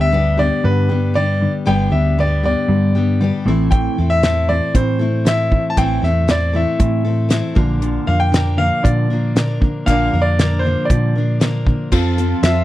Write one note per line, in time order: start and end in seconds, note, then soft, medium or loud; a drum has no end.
0.00 0.49 D2 medium
0.00 0.11 G2 medium
0.00 0.11 D3 medium
0.00 0.11 B3 soft
0.00 0.12 D4 soft
0.00 0.13 G4 soft
0.00 0.36 E5 loud
0.11 0.36 G2 medium
0.11 0.36 D3 medium
0.11 0.38 G3 medium
0.11 0.38 B3 medium
0.11 0.38 D4 medium
0.11 0.36 G4 medium
0.37 0.61 G2 medium
0.37 0.62 D3 medium
0.37 0.90 G3 soft
0.37 0.90 B3 soft
0.37 0.88 D4 soft
0.37 0.88 G4 soft
0.37 0.63 D5 medium
0.64 0.88 G2 medium
0.64 1.46 G2 medium
0.64 0.88 D3 medium
0.64 0.89 G3 medium
0.64 1.12 B4 medium
0.89 1.13 G2 medium
0.89 1.14 D3 medium
0.89 1.13 G3 soft
0.89 1.14 B3 soft
0.89 1.15 D4 soft
0.89 1.15 G4 soft
1.14 1.39 G2 medium
1.14 1.39 D3 medium
1.14 1.65 G3 medium
1.14 1.66 B3 medium
1.14 1.66 D4 medium
1.14 1.66 G4 medium
1.14 1.51 D5 medium
1.41 1.64 G2 medium
1.41 1.65 D3 medium
1.66 1.87 G1 medium
1.66 1.92 G2 medium
1.66 1.91 G2 medium
1.66 1.92 D3 medium
1.66 1.91 D3 medium
1.66 1.92 G3 medium
1.66 1.91 B3 medium
1.66 1.90 D4 medium
1.66 1.89 G4 medium
1.66 1.93 G5 medium
1.90 2.53 D2 medium
1.90 2.15 G2 medium
1.90 2.16 D3 medium
1.90 2.17 G3 soft
1.90 2.17 B3 soft
1.90 2.17 D4 soft
1.90 2.17 G4 soft
1.90 2.16 E5 medium
2.18 2.41 G2 medium
2.18 2.41 D3 medium
2.18 2.44 G3 medium
2.18 2.44 B3 medium
2.18 2.43 D4 medium
2.18 2.42 G4 medium
2.18 2.44 D5 medium
2.43 2.67 G2 medium
2.43 2.67 D3 medium
2.43 2.96 G3 soft
2.43 2.96 B3 soft
2.43 2.95 D4 soft
2.43 2.94 G4 soft
2.43 3.43 D5 medium
2.68 3.30 G2 medium
2.68 2.93 G2 medium
2.68 2.93 D3 medium
2.68 2.94 G3 medium
2.94 3.18 G2 medium
2.94 3.18 D3 medium
2.94 3.19 G3 soft
2.94 3.21 B3 soft
2.94 3.21 D4 soft
2.94 3.21 G4 soft
3.21 3.44 G2 medium
3.21 3.44 D3 medium
3.21 3.46 G3 medium
3.21 3.47 B3 medium
3.21 3.47 D4 medium
3.21 3.47 G4 medium
3.45 3.87 A1 medium
3.45 3.70 A2 medium
3.45 3.99 A2 soft
3.45 3.70 E3 medium
3.45 3.99 E3 medium
3.45 3.99 A3 medium
3.45 3.71 C4 medium
3.45 3.98 C4 medium
3.45 3.98 E4 medium
3.45 3.97 A4 medium
3.71 3.95 A2 medium
3.71 3.96 E3 medium
3.71 3.96 C4 medium
3.71 4.11 G5 medium
3.71 kick medium
3.71 closed hi-hat soft
3.98 4.60 E2 medium
3.98 4.21 A2 medium
3.98 4.21 E3 medium
3.98 4.23 A3 soft
3.98 4.24 C4 soft
3.98 4.24 E4 soft
3.98 4.23 A4 soft
4.10 4.50 E5 medium
4.23 4.47 A2 medium
4.23 4.47 E3 medium
4.23 4.49 A3 medium
4.23 4.49 C4 medium
4.23 4.48 E4 medium
4.23 4.47 A4 medium
4.23 snare medium
4.23 closed hi-hat medium
4.48 4.72 A2 medium
4.48 4.72 E3 medium
4.48 5.01 A3 soft
4.48 5.00 C4 soft
4.48 5.00 E4 soft
4.48 4.98 A4 soft
4.48 4.73 D5 medium
4.74 4.98 A2 medium
4.74 5.57 A2 medium
4.74 4.99 E3 medium
4.74 4.99 C4 medium
4.74 5.28 C5 medium
4.74 kick loud
4.74 closed hi-hat medium
4.99 5.23 A2 medium
4.99 5.23 E3 medium
4.99 5.24 A3 soft
4.99 5.25 C4 soft
4.99 5.26 E4 soft
4.99 5.25 A4 soft
5.25 5.48 A2 medium
5.25 5.49 E3 medium
5.25 5.77 A3 medium
5.25 5.77 C4 medium
5.25 5.77 E4 medium
5.25 5.77 A4 medium
5.25 5.62 E5 medium
5.25 snare loud
5.25 closed hi-hat medium
5.51 5.74 A2 medium
5.51 5.75 E3 medium
5.51 kick medium
5.70 5.77 A5 medium
5.77 5.98 A1 medium
5.77 6.03 A2 medium
5.77 6.01 A2 medium
5.77 6.03 E3 medium
5.77 6.02 E3 medium
5.77 6.03 A3 medium
5.77 6.03 C4 medium
5.77 6.02 C4 medium
5.77 6.01 E4 medium
5.77 6.01 A4 medium
5.77 6.01 G5 medium
5.77 kick medium
5.77 closed hi-hat soft
6.02 6.64 E2 medium
6.02 6.26 A2 medium
6.02 6.26 E3 medium
6.02 6.26 A3 soft
6.02 6.28 C4 soft
6.02 6.28 E4 soft
6.02 6.28 A4 soft
6.02 6.30 E5 medium
6.02 snare soft
6.28 6.52 A2 medium
6.28 6.52 E3 medium
6.28 6.53 A3 medium
6.28 6.54 C4 medium
6.28 6.53 E4 medium
6.28 6.52 A4 medium
6.28 6.56 D5 medium
6.28 snare loud
6.28 closed hi-hat medium
6.53 6.77 A2 medium
6.53 6.77 E3 medium
6.53 7.06 A3 soft
6.53 7.06 C4 soft
6.53 7.05 E4 soft
6.53 7.03 A4 soft
6.53 7.53 E5 medium
6.79 7.41 A2 medium
6.79 7.04 A2 medium
6.79 7.04 E3 medium
6.79 7.04 C4 medium
6.79 kick loud
6.79 closed hi-hat medium
7.05 7.28 A2 medium
7.05 7.29 E3 medium
7.05 7.28 A3 soft
7.05 7.29 C4 soft
7.05 7.30 E4 soft
7.05 7.30 A4 soft
7.29 7.54 A2 medium
7.29 7.54 E3 medium
7.29 7.55 A3 medium
7.29 7.56 C4 medium
7.29 7.56 E4 medium
7.29 7.55 A4 medium
7.29 snare medium
7.29 closed hi-hat medium
7.55 7.97 A#1 medium
7.55 7.80 A#2 medium
7.55 8.08 A#2 soft
7.55 7.80 D3 medium
7.55 8.08 D3 medium
7.55 8.10 F3 medium
7.55 7.80 F3 medium
7.55 8.08 A#3 medium
7.55 8.07 D4 medium
7.55 8.06 A#4 medium
7.55 kick loud
7.81 8.06 A#2 medium
7.81 8.06 D3 medium
7.81 8.06 F3 loud
7.81 closed hi-hat soft
8.07 8.69 F2 medium
8.07 8.30 A#2 medium
8.07 8.30 D3 medium
8.07 8.31 F3 soft
8.07 8.33 A#3 soft
8.07 8.34 D4 soft
8.07 8.33 A#4 soft
8.07 8.19 F5 medium
8.20 8.60 G5 medium
8.32 8.56 A#2 medium
8.32 8.56 D3 medium
8.32 8.58 F3 medium
8.32 8.59 A#3 medium
8.32 8.59 D4 medium
8.32 8.58 A#4 medium
8.32 snare loud
8.32 closed hi-hat medium
8.57 8.81 A#2 medium
8.57 8.81 D3 medium
8.57 9.13 F3 soft
8.57 9.11 A#3 soft
8.57 9.10 D4 soft
8.57 9.09 A#4 soft
8.57 8.85 F5 medium
8.83 9.08 A#2 medium
8.83 9.67 A#2 medium
8.83 9.08 D3 medium
8.83 9.08 F3 medium
8.83 9.57 D5 medium
8.83 kick loud
8.83 closed hi-hat medium
9.09 9.33 A#2 medium
9.09 9.33 D3 medium
9.09 9.34 F3 soft
9.09 9.36 A#3 soft
9.09 9.36 D4 soft
9.09 9.36 A#4 soft
9.35 9.59 A#2 medium
9.35 9.59 D3 medium
9.35 9.89 F3 soft
9.35 9.88 A#3 medium
9.35 9.88 D4 medium
9.35 9.88 A#4 medium
9.35 snare loud
9.35 closed hi-hat medium
9.61 9.84 A#2 medium
9.61 9.84 D3 medium
9.61 kick medium
9.86 10.08 A#1 medium
9.86 10.11 A#2 medium
9.86 10.13 A#2 medium
9.86 10.11 D3 medium
9.86 10.14 D3 medium
9.86 10.11 F3 medium
9.86 10.14 F3 medium
9.86 10.14 A#3 medium
9.86 10.14 D4 medium
9.86 10.26 F5 loud
9.86 kick medium
9.86 closed hi-hat medium
9.91 10.12 A#4 medium
10.13 10.75 F2 medium
10.13 10.36 A#2 medium
10.13 10.36 D3 medium
10.13 10.38 F3 soft
10.13 10.39 A#3 soft
10.13 10.39 D4 soft
10.13 10.39 A#4 soft
10.22 10.63 D5 medium
10.39 10.62 A#2 medium
10.39 10.62 D3 medium
10.39 10.64 F3 medium
10.39 10.65 A#3 medium
10.39 10.64 D4 medium
10.39 10.62 A#4 medium
10.39 snare medium
10.39 closed hi-hat medium
10.59 10.85 C5 medium
10.64 10.88 A#2 medium
10.64 10.88 D3 medium
10.64 11.16 F3 soft
10.64 11.16 A#3 soft
10.64 11.16 D4 soft
10.64 11.14 A#4 soft
10.85 11.35 D5 medium
10.90 11.72 A#2 medium
10.90 11.14 A#2 medium
10.90 11.14 D3 medium
10.90 11.14 F3 medium
10.90 kick loud
10.90 closed hi-hat medium
11.16 11.39 A#2 medium
11.16 11.39 D3 medium
11.16 11.39 F3 soft
11.16 11.40 A#3 soft
11.16 11.41 D4 soft
11.16 11.41 A#4 soft
11.40 11.64 A#2 medium
11.40 11.64 D3 medium
11.40 11.91 F3 medium
11.40 11.92 A#3 medium
11.40 11.92 D4 medium
11.40 11.93 A#4 medium
11.40 snare loud
11.40 closed hi-hat medium
11.67 11.90 A#2 medium
11.67 11.90 D3 medium
11.67 kick medium
11.92 12.33 F2 medium
11.92 12.17 F3 medium
11.92 12.64 F3 medium
11.92 12.18 C4 medium
11.92 12.64 C4 medium
11.92 12.18 F4 medium
11.92 12.64 F4 medium
11.92 12.16 A4 medium
11.92 12.64 A4 loud
11.92 kick medium
11.92 crash medium
12.17 12.43 C4 soft
12.17 12.44 F4 medium
12.17 12.43 A4 medium
12.17 closed hi-hat soft
12.42 12.64 F2 medium
12.42 12.64 F3 medium
12.42 12.64 C4 medium
12.42 12.64 F4 medium
12.42 12.64 A4 medium
12.42 12.64 E5 medium
12.42 snare medium
12.42 closed hi-hat medium